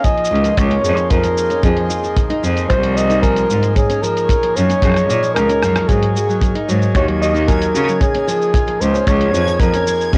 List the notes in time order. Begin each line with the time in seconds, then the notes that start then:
Already playing: A#3 D#4 G#4
0.04 F3 D#5 G#5, kick, closed hi-hat, cabasa
0.17 closed hi-hat
0.24 closed hi-hat, cabasa
0.31 C#2 F4
0.35 closed hi-hat
0.44 F3 C6, closed hi-hat, cabasa
0.57 C#2 C#5, finger snap, kick, closed hi-hat, cabasa
0.70 C#4, closed hi-hat
0.83 F2 F3 G#4, cabasa
0.97 closed hi-hat, cabasa
1.10 F2 F4 A#4, kick, closed hi-hat, cabasa
1.24 F3, closed hi-hat, cabasa
1.38 cabasa
1.50 C#4, closed hi-hat, cabasa
1.63 F2 F3 G#4, kick, closed hi-hat, cabasa
1.77 closed hi-hat
1.90 F4, cabasa
2.03 F3, cabasa
2.17 kick, closed hi-hat, cabasa
2.30 D#4, closed hi-hat
2.43 F2 F3, cabasa
2.57 closed hi-hat, cabasa
2.69 C2 F4 C5, finger snap, kick, closed hi-hat, cabasa
2.83 F3, closed hi-hat
2.96 D#5, cabasa
3.10 D#4, closed hi-hat, cabasa
3.22 F3 A#4 G#5, kick, closed hi-hat, cabasa
3.36 closed hi-hat, cabasa
3.50 G#2 F4, cabasa
3.63 F3, closed hi-hat, cabasa
3.75 G#4 C#5, kick, closed hi-hat, cabasa
3.90 C#4, closed hi-hat, cabasa
4.02 F3 G#4 A#4, cabasa
4.17 closed hi-hat, cabasa
4.24 C#5
4.29 F4, kick, closed hi-hat, cabasa
4.43 F3, closed hi-hat
4.56 F#2 C#5, cabasa
4.69 C#4, closed hi-hat, cabasa
4.82 F#2 F3 G#4, kick, cross-stick, closed hi-hat, cabasa
4.85 cross-stick
4.87 cross-stick
4.89 cross-stick
4.92 cross-stick
4.94 cross-stick
4.96 cross-stick, closed hi-hat, cabasa
5.09 A#2 F4, cabasa
5.22 F3, closed hi-hat, cabasa
5.34 C#2 A#4, cross-stick, closed hi-hat, cabasa
5.49 C#4, closed hi-hat, cabasa
5.62 F#2 F3, cross-stick, cabasa
5.76 cross-stick, closed hi-hat, cabasa
5.88 G#2 F#3 G#4 G#6, kick, closed hi-hat, cabasa
6.03 closed hi-hat
6.15 F#4, cabasa
6.29 F#3, cabasa
6.41 kick, closed hi-hat, cabasa
6.55 D#4, closed hi-hat
6.68 G#2 F#3, cabasa
6.82 cabasa
6.95 D#2 F#4 C#5, finger snap, kick, closed hi-hat, cabasa
7.08 F#3, closed hi-hat
7.21 D#5, cabasa
7.34 D#4, cabasa
7.47 F#3 A#4 G#5, kick, closed hi-hat, cabasa
7.62 closed hi-hat, cabasa
7.75 C#3 F#4, cabasa
7.88 F#3, cabasa
8.01 A#3 G#4 C#5, kick, closed hi-hat, cabasa
8.15 C#4, closed hi-hat
8.27 F3 G#4, cabasa
8.42 cabasa
8.54 F4, kick, closed hi-hat, cabasa
8.67 F3, closed hi-hat
8.81 C#2 C5, cabasa
8.94 C#4, cabasa
9.07 C#2 F3 G#4 C#5, finger snap, kick, closed hi-hat, cabasa
9.21 closed hi-hat
9.34 F2 F4, cabasa
9.47 F3, cabasa
9.60 F2 A#4, kick, closed hi-hat, cabasa
9.74 C#4, closed hi-hat, cabasa
9.87 F3, cabasa
10.01 cabasa
10.13 F2 F4 G#4, kick, closed hi-hat, cabasa